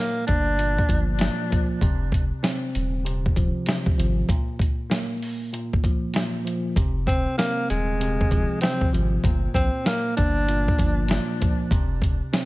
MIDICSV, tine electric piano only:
0, 0, Header, 1, 2, 480
1, 0, Start_track
1, 0, Tempo, 618557
1, 1409, Time_signature, 4, 2, 24, 8
1, 9662, End_track
2, 0, Start_track
2, 0, Title_t, "Tine electric piano"
2, 0, Program_c, 0, 4
2, 0, Control_c, 0, 64, 127
2, 0, Note_on_c, 0, 46, 92
2, 0, Note_on_c, 0, 58, 92
2, 439, Note_off_c, 0, 46, 0
2, 448, Note_on_c, 0, 46, 81
2, 691, Note_on_c, 0, 53, 77
2, 913, Note_off_c, 0, 46, 0
2, 923, Note_on_c, 0, 46, 84
2, 1155, Note_off_c, 0, 53, 0
2, 1164, Note_on_c, 0, 53, 81
2, 1165, Note_off_c, 0, 58, 0
2, 1406, Note_off_c, 0, 46, 0
2, 1407, Note_off_c, 0, 53, 0
2, 1412, Note_on_c, 0, 48, 98
2, 1418, Control_c, 0, 64, 0
2, 1541, Control_c, 0, 64, 127
2, 1885, Note_on_c, 0, 60, 99
2, 2359, Note_off_c, 0, 48, 0
2, 2369, Note_on_c, 0, 48, 91
2, 2611, Note_on_c, 0, 53, 88
2, 2836, Note_off_c, 0, 48, 0
2, 2845, Note_on_c, 0, 48, 85
2, 3077, Note_off_c, 0, 53, 0
2, 3087, Note_off_c, 0, 60, 0
2, 3087, Note_on_c, 0, 53, 80
2, 3327, Note_off_c, 0, 48, 0
2, 3328, Note_off_c, 0, 53, 0
2, 3333, Note_on_c, 0, 46, 92
2, 3340, Control_c, 0, 64, 0
2, 3488, Control_c, 0, 64, 127
2, 3800, Note_on_c, 0, 58, 96
2, 4280, Note_off_c, 0, 46, 0
2, 4289, Note_on_c, 0, 46, 84
2, 4532, Note_on_c, 0, 53, 76
2, 4755, Note_off_c, 0, 46, 0
2, 4765, Note_on_c, 0, 46, 85
2, 4997, Note_off_c, 0, 53, 0
2, 5005, Note_off_c, 0, 58, 0
2, 5006, Note_on_c, 0, 53, 76
2, 5247, Note_off_c, 0, 46, 0
2, 5248, Note_off_c, 0, 53, 0
2, 5254, Note_on_c, 0, 48, 96
2, 5260, Control_c, 0, 64, 0
2, 5373, Control_c, 0, 64, 127
2, 5727, Note_on_c, 0, 60, 96
2, 6201, Note_off_c, 0, 48, 0
2, 6210, Note_on_c, 0, 48, 86
2, 6454, Note_on_c, 0, 53, 85
2, 6677, Note_off_c, 0, 48, 0
2, 6686, Note_on_c, 0, 48, 81
2, 6920, Note_off_c, 0, 53, 0
2, 6928, Note_off_c, 0, 60, 0
2, 6929, Note_on_c, 0, 53, 83
2, 7168, Note_off_c, 0, 48, 0
2, 7169, Note_off_c, 0, 53, 0
2, 7175, Note_on_c, 0, 46, 94
2, 7179, Control_c, 0, 64, 0
2, 7306, Control_c, 0, 64, 127
2, 7643, Note_on_c, 0, 58, 97
2, 8121, Note_off_c, 0, 46, 0
2, 8130, Note_on_c, 0, 46, 81
2, 8372, Note_on_c, 0, 53, 77
2, 8595, Note_off_c, 0, 46, 0
2, 8604, Note_on_c, 0, 46, 83
2, 8836, Note_off_c, 0, 53, 0
2, 8846, Note_off_c, 0, 58, 0
2, 8846, Note_on_c, 0, 53, 80
2, 9087, Note_off_c, 0, 46, 0
2, 9087, Note_off_c, 0, 53, 0
2, 9093, Note_on_c, 0, 48, 96
2, 9098, Control_c, 0, 64, 0
2, 9226, Control_c, 0, 64, 127
2, 9565, Note_on_c, 0, 60, 94
2, 9662, Note_off_c, 0, 48, 0
2, 9662, Note_off_c, 0, 60, 0
2, 9662, End_track
0, 0, End_of_file